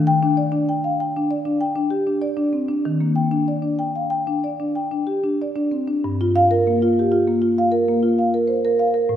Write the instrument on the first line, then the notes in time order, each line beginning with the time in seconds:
marimba
Already playing: D#3 D4
0.07 G5
0.23 D4
0.37 D5
0.52 D4
0.69 G5
0.84 F5
1.00 G5
1.16 D4
1.31 D5
1.45 D4
1.61 G5
1.76 D4
1.91 G4
2.07 D4
2.22 D5
2.37 D4
2.53 C4
2.68 D4
2.85 D#3
3.00 A#3
3.16 G5
3.31 D4
3.48 D5
3.62 D4
3.79 G5
3.96 F5
4.10 G5
4.27 D4
4.44 D5
4.60 D4
4.75 G5
4.91 D4
5.07 G4
5.23 D4
5.42 D5
5.56 D4
5.71 C4
5.87 D4
6.04 G2
6.21 F4
6.36 F5
6.51 A#4
6.67 A#3
6.82 F4
6.99 G4
7.12 F4
7.27 A#3
7.42 F4
7.58 F5
7.72 A#4
7.88 A#3
8.03 F4
8.19 F5
8.34 A#4
8.48 C5
8.65 A#4
8.79 F5
8.94 A#4
9.09 A2